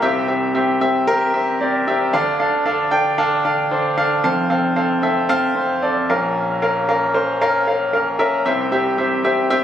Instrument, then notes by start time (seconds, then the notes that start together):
grand piano
0.02 C2 C3 C4 G4 E5
0.28 C4 G4 E5
0.54 C4 G4 E5
0.81 C4 G4 E5
1.07 C4 G4 A#4
1.33 C4 G4 E5
1.60 C4 G4 D5
1.87 C4 G4 E5
2.13 D2 D3 D4 A4 F5
2.39 D4 A4 F5
2.66 D4 A4 F5
2.91 D4 A4 G5
3.18 D4 A4 F5
3.45 D4 A4 F5
3.71 D4 A4 C5
3.97 D4 A4 F5
4.24 F1 F2 C4 A4 F5
4.50 C4 A4 F5
4.76 C4 A4 F5
5.02 C4 A4 E5
5.29 C4 A4 F5
5.55 C4 A4 C5
5.82 C4 A4 D5
6.09 A#1 A#2 C#4 A#4 F5
6.62 C#4 A#4 F5
6.89 C#4 A#4 F5
7.14 C#4 A#4 C5
7.41 C#4 A#4 F5
7.67 C#4 A#4 F5
7.93 C#4 A#4 F5
8.19 C#4 A#4 E5
8.45 C2 C3 C4 G4 E5
8.72 C4 G4 E5
8.98 C4 G4 E5
9.24 C4 G4 E5
9.50 C4 G4 E5